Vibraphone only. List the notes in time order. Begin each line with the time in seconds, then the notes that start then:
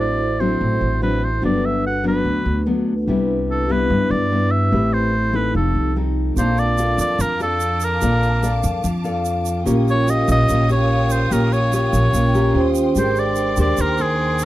Already playing: E4 F#4 A4 C5
1.39 D4 F#4
1.44 A4 B4
2.43 D4 F#4 A4 B4
3.04 D4 E4 G4
3.11 B4
4.69 C4 E4
4.73 G4 B5
5.51 C4 D#4 G4
5.57 A4
6.35 C4 D4 F4
6.41 A5
9.64 C#4 F4 G4
9.70 A#4
12.12 C#4 F4 G4 A#4
12.35 A#5
12.53 C#4 F4 G4 C5 G5
12.92 D4 A#4 G5
12.99 C5